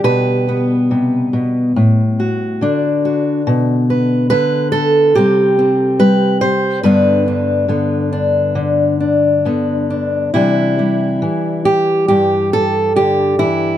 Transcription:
0, 0, Header, 1, 2, 480
1, 0, Start_track
1, 0, Key_signature, 0, "major"
1, 0, Tempo, 852273
1, 21, Time_signature, 4, 2, 24, 8
1, 4821, Tempo, 884956
1, 6741, Tempo, 862069
1, 7675, End_track
2, 0, Start_track
2, 0, Title_t, "Steel-string acoustic guitar"
2, 0, Program_c, 0, 25
2, 0, Note_on_c, 0, 50, 70
2, 0, Note_on_c, 0, 55, 53
2, 0, Note_on_c, 0, 62, 45
2, 22, Note_on_c, 0, 47, 84
2, 24, Note_on_c, 0, 71, 93
2, 272, Note_off_c, 0, 62, 0
2, 274, Note_on_c, 0, 59, 47
2, 512, Note_on_c, 0, 48, 62
2, 743, Note_off_c, 0, 47, 0
2, 748, Note_off_c, 0, 48, 0
2, 750, Note_on_c, 0, 47, 65
2, 991, Note_off_c, 0, 47, 0
2, 992, Note_off_c, 0, 50, 0
2, 993, Note_on_c, 0, 45, 71
2, 996, Note_off_c, 0, 59, 0
2, 1237, Note_on_c, 0, 66, 46
2, 1470, Note_off_c, 0, 45, 0
2, 1470, Note_off_c, 0, 55, 0
2, 1472, Note_on_c, 0, 50, 57
2, 1478, Note_on_c, 0, 62, 52
2, 1708, Note_off_c, 0, 66, 0
2, 1718, Note_on_c, 0, 66, 50
2, 1921, Note_off_c, 0, 62, 0
2, 1922, Note_off_c, 0, 66, 0
2, 1947, Note_off_c, 0, 71, 0
2, 1953, Note_on_c, 0, 47, 84
2, 2197, Note_on_c, 0, 71, 51
2, 2415, Note_off_c, 0, 71, 0
2, 2421, Note_on_c, 0, 71, 99
2, 2423, Note_off_c, 0, 50, 0
2, 2429, Note_off_c, 0, 47, 0
2, 2430, Note_on_c, 0, 50, 75
2, 2655, Note_off_c, 0, 71, 0
2, 2657, Note_on_c, 0, 69, 98
2, 2900, Note_off_c, 0, 69, 0
2, 2903, Note_on_c, 0, 67, 92
2, 2905, Note_off_c, 0, 50, 0
2, 2907, Note_on_c, 0, 48, 71
2, 2912, Note_on_c, 0, 55, 50
2, 2917, Note_on_c, 0, 60, 53
2, 3140, Note_off_c, 0, 60, 0
2, 3147, Note_on_c, 0, 60, 47
2, 3373, Note_off_c, 0, 55, 0
2, 3375, Note_on_c, 0, 55, 64
2, 3377, Note_on_c, 0, 71, 96
2, 3609, Note_off_c, 0, 71, 0
2, 3611, Note_on_c, 0, 72, 100
2, 3829, Note_off_c, 0, 48, 0
2, 3829, Note_off_c, 0, 60, 0
2, 3847, Note_off_c, 0, 72, 0
2, 3849, Note_on_c, 0, 71, 86
2, 3853, Note_on_c, 0, 43, 82
2, 3854, Note_off_c, 0, 55, 0
2, 3855, Note_off_c, 0, 67, 0
2, 3856, Note_on_c, 0, 50, 53
2, 3860, Note_on_c, 0, 59, 53
2, 3865, Note_on_c, 0, 62, 52
2, 4092, Note_off_c, 0, 62, 0
2, 4099, Note_on_c, 0, 62, 46
2, 4321, Note_off_c, 0, 50, 0
2, 4327, Note_off_c, 0, 59, 0
2, 4328, Note_on_c, 0, 50, 64
2, 4333, Note_on_c, 0, 59, 46
2, 4569, Note_off_c, 0, 62, 0
2, 4576, Note_on_c, 0, 62, 50
2, 4810, Note_off_c, 0, 50, 0
2, 4817, Note_on_c, 0, 50, 59
2, 5055, Note_off_c, 0, 62, 0
2, 5062, Note_on_c, 0, 62, 41
2, 5299, Note_off_c, 0, 50, 0
2, 5302, Note_off_c, 0, 59, 0
2, 5306, Note_on_c, 0, 50, 56
2, 5310, Note_on_c, 0, 59, 42
2, 5543, Note_off_c, 0, 62, 0
2, 5550, Note_on_c, 0, 62, 45
2, 5755, Note_off_c, 0, 43, 0
2, 5758, Note_off_c, 0, 62, 0
2, 5760, Note_off_c, 0, 59, 0
2, 5782, Note_off_c, 0, 71, 0
2, 5785, Note_on_c, 0, 64, 76
2, 5789, Note_on_c, 0, 48, 72
2, 5790, Note_off_c, 0, 50, 0
2, 5792, Note_on_c, 0, 52, 46
2, 5797, Note_on_c, 0, 55, 49
2, 5799, Note_on_c, 0, 62, 46
2, 6024, Note_off_c, 0, 55, 0
2, 6030, Note_on_c, 0, 55, 39
2, 6257, Note_off_c, 0, 52, 0
2, 6263, Note_on_c, 0, 52, 61
2, 6264, Note_off_c, 0, 48, 0
2, 6496, Note_off_c, 0, 64, 0
2, 6499, Note_on_c, 0, 67, 90
2, 6726, Note_off_c, 0, 67, 0
2, 6732, Note_on_c, 0, 67, 84
2, 6740, Note_on_c, 0, 43, 58
2, 6977, Note_off_c, 0, 67, 0
2, 6982, Note_on_c, 0, 69, 95
2, 7217, Note_off_c, 0, 52, 0
2, 7219, Note_on_c, 0, 50, 54
2, 7220, Note_off_c, 0, 69, 0
2, 7222, Note_on_c, 0, 67, 90
2, 7457, Note_off_c, 0, 50, 0
2, 7458, Note_off_c, 0, 67, 0
2, 7459, Note_on_c, 0, 52, 61
2, 7460, Note_on_c, 0, 64, 84
2, 7671, Note_off_c, 0, 43, 0
2, 7675, Note_off_c, 0, 52, 0
2, 7675, Note_off_c, 0, 55, 0
2, 7675, Note_off_c, 0, 62, 0
2, 7675, Note_off_c, 0, 64, 0
2, 7675, End_track
0, 0, End_of_file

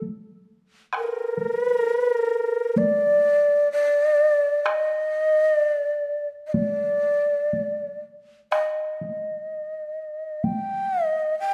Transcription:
0, 0, Header, 1, 3, 480
1, 0, Start_track
1, 0, Tempo, 904977
1, 491, Time_signature, 4, 2, 24, 8
1, 971, Tempo, 938967
1, 2411, Tempo, 947867
1, 3371, Tempo, 978793
1, 4331, Tempo, 958466
1, 5852, End_track
2, 0, Start_track
2, 0, Title_t, "Shakuhachi"
2, 0, Program_c, 0, 77
2, 515, Note_on_c, 0, 70, 82
2, 849, Note_off_c, 0, 70, 0
2, 849, Note_on_c, 0, 71, 82
2, 939, Note_off_c, 0, 71, 0
2, 939, Note_on_c, 0, 70, 82
2, 1032, Note_off_c, 0, 70, 0
2, 1032, Note_on_c, 0, 71, 82
2, 1119, Note_off_c, 0, 71, 0
2, 1119, Note_on_c, 0, 70, 82
2, 1454, Note_on_c, 0, 74, 86
2, 1462, Note_off_c, 0, 70, 0
2, 1932, Note_off_c, 0, 74, 0
2, 1938, Note_on_c, 0, 74, 88
2, 2412, Note_on_c, 0, 75, 82
2, 2419, Note_off_c, 0, 74, 0
2, 2888, Note_off_c, 0, 75, 0
2, 2888, Note_on_c, 0, 74, 82
2, 3235, Note_off_c, 0, 74, 0
2, 3334, Note_on_c, 0, 75, 44
2, 3362, Note_on_c, 0, 74, 70
2, 3370, Note_off_c, 0, 75, 0
2, 4089, Note_off_c, 0, 74, 0
2, 4338, Note_on_c, 0, 75, 64
2, 5303, Note_on_c, 0, 79, 75
2, 5310, Note_off_c, 0, 75, 0
2, 5623, Note_off_c, 0, 79, 0
2, 5623, Note_on_c, 0, 75, 75
2, 5776, Note_off_c, 0, 75, 0
2, 5783, Note_on_c, 0, 79, 87
2, 5852, Note_off_c, 0, 79, 0
2, 5852, End_track
3, 0, Start_track
3, 0, Title_t, "Taiko and cinematic ensemble drums"
3, 9, Note_on_c, 9, 48, 32
3, 62, Note_off_c, 9, 48, 0
3, 495, Note_on_c, 9, 37, 47
3, 548, Note_off_c, 9, 37, 0
3, 729, Note_on_c, 9, 48, 33
3, 782, Note_off_c, 9, 48, 0
3, 1447, Note_on_c, 9, 48, 53
3, 1499, Note_off_c, 9, 48, 0
3, 2415, Note_on_c, 9, 37, 55
3, 2466, Note_off_c, 9, 37, 0
3, 3370, Note_on_c, 9, 48, 54
3, 3419, Note_off_c, 9, 48, 0
3, 3855, Note_on_c, 9, 48, 39
3, 3904, Note_off_c, 9, 48, 0
3, 4342, Note_on_c, 9, 37, 47
3, 4392, Note_off_c, 9, 37, 0
3, 4588, Note_on_c, 9, 48, 35
3, 4638, Note_off_c, 9, 48, 0
3, 5302, Note_on_c, 9, 48, 47
3, 5352, Note_off_c, 9, 48, 0
3, 5852, End_track
0, 0, End_of_file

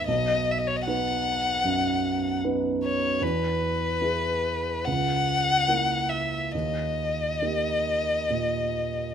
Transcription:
0, 0, Header, 1, 3, 480
1, 0, Start_track
1, 0, Tempo, 788436
1, 46, Time_signature, 4, 2, 24, 8
1, 2445, Tempo, 840336
1, 3885, Tempo, 879765
1, 5308, End_track
2, 0, Start_track
2, 0, Title_t, "Violin"
2, 0, Program_c, 0, 40
2, 40, Note_on_c, 0, 75, 58
2, 311, Note_on_c, 0, 76, 44
2, 320, Note_off_c, 0, 75, 0
2, 355, Note_on_c, 0, 75, 46
2, 364, Note_off_c, 0, 76, 0
2, 410, Note_on_c, 0, 73, 48
2, 419, Note_off_c, 0, 75, 0
2, 464, Note_on_c, 0, 75, 48
2, 473, Note_off_c, 0, 73, 0
2, 522, Note_off_c, 0, 75, 0
2, 526, Note_on_c, 0, 78, 60
2, 1461, Note_off_c, 0, 78, 0
2, 1730, Note_on_c, 0, 73, 52
2, 1964, Note_on_c, 0, 71, 57
2, 1973, Note_off_c, 0, 73, 0
2, 2919, Note_on_c, 0, 78, 59
2, 2927, Note_off_c, 0, 71, 0
2, 3629, Note_on_c, 0, 76, 42
2, 3637, Note_off_c, 0, 78, 0
2, 3873, Note_on_c, 0, 75, 48
2, 3882, Note_off_c, 0, 76, 0
2, 5308, Note_off_c, 0, 75, 0
2, 5308, End_track
3, 0, Start_track
3, 0, Title_t, "Grand piano"
3, 0, Program_c, 1, 0
3, 0, Control_c, 1, 64, 127
3, 48, Note_on_c, 1, 35, 43
3, 55, Control_c, 1, 64, 0
3, 143, Control_c, 1, 64, 127
3, 520, Note_off_c, 1, 35, 0
3, 532, Note_on_c, 1, 59, 33
3, 532, Note_on_c, 1, 63, 33
3, 537, Note_on_c, 1, 71, 33
3, 981, Note_off_c, 1, 59, 0
3, 981, Note_off_c, 1, 63, 0
3, 984, Note_off_c, 1, 71, 0
3, 1001, Note_on_c, 1, 42, 40
3, 1467, Note_off_c, 1, 42, 0
3, 1487, Note_on_c, 1, 59, 32
3, 1488, Note_on_c, 1, 63, 33
3, 1492, Note_on_c, 1, 71, 37
3, 1937, Note_off_c, 1, 59, 0
3, 1938, Note_off_c, 1, 63, 0
3, 1940, Note_off_c, 1, 71, 0
3, 1955, Note_on_c, 1, 40, 44
3, 1971, Control_c, 1, 64, 0
3, 2077, Control_c, 1, 64, 127
3, 2427, Note_off_c, 1, 40, 0
3, 2444, Note_on_c, 1, 59, 32
3, 2445, Note_on_c, 1, 64, 30
3, 2451, Note_on_c, 1, 68, 34
3, 2909, Note_off_c, 1, 59, 0
3, 2910, Note_off_c, 1, 64, 0
3, 2913, Note_off_c, 1, 68, 0
3, 2932, Note_on_c, 1, 37, 39
3, 2941, Control_c, 1, 64, 0
3, 3037, Control_c, 1, 64, 127
3, 3383, Note_off_c, 1, 37, 0
3, 3395, Note_on_c, 1, 58, 25
3, 3399, Note_on_c, 1, 64, 26
3, 3401, Note_on_c, 1, 70, 28
3, 3859, Note_off_c, 1, 58, 0
3, 3861, Note_off_c, 1, 64, 0
3, 3862, Note_off_c, 1, 70, 0
3, 3889, Note_on_c, 1, 39, 33
3, 3893, Control_c, 1, 64, 0
3, 3985, Control_c, 1, 64, 127
3, 4352, Note_off_c, 1, 39, 0
3, 4366, Note_on_c, 1, 58, 24
3, 4367, Note_on_c, 1, 63, 25
3, 4369, Note_on_c, 1, 67, 28
3, 4822, Note_off_c, 1, 58, 0
3, 4823, Note_off_c, 1, 63, 0
3, 4824, Note_off_c, 1, 67, 0
3, 4848, Note_on_c, 1, 46, 28
3, 5308, Note_off_c, 1, 46, 0
3, 5308, End_track
0, 0, End_of_file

